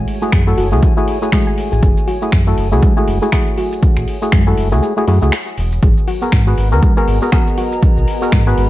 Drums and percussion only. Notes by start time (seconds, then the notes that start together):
0.08 open hi-hat
0.22 shaker
0.32 finger snap, kick, shaker
0.47 shaker
0.58 open hi-hat
0.72 shaker
0.83 kick, shaker
0.97 shaker
1.08 open hi-hat
1.22 shaker
1.32 finger snap, kick, shaker
1.47 shaker
1.58 open hi-hat
1.72 shaker
1.83 kick, shaker
1.97 shaker
2.08 open hi-hat
2.22 shaker
2.32 finger snap, kick, shaker
2.47 shaker
2.58 open hi-hat
2.72 shaker
2.83 kick, shaker
2.97 shaker
3.08 open hi-hat
3.22 shaker
3.32 finger snap, kick, shaker
3.47 shaker
3.58 open hi-hat
3.72 shaker
3.83 kick, shaker
3.97 finger snap, shaker
4.08 open hi-hat
4.22 shaker
4.32 finger snap, kick, shaker
4.47 shaker
4.58 open hi-hat
4.72 shaker
4.83 shaker
4.97 shaker
5.08 open hi-hat
5.22 shaker
5.32 finger snap, shaker
5.47 shaker
5.58 open hi-hat
5.72 shaker
5.83 kick, shaker
5.97 shaker
6.08 open hi-hat
6.22 shaker
6.32 finger snap, kick, shaker
6.47 shaker
6.58 open hi-hat
6.72 shaker
6.83 kick, shaker
6.97 shaker
7.08 open hi-hat
7.22 shaker
7.32 finger snap, kick, shaker
7.47 shaker
7.58 open hi-hat
7.72 shaker
7.83 kick, shaker
7.97 shaker
8.08 open hi-hat
8.22 shaker
8.32 finger snap, kick, shaker
8.47 shaker
8.58 open hi-hat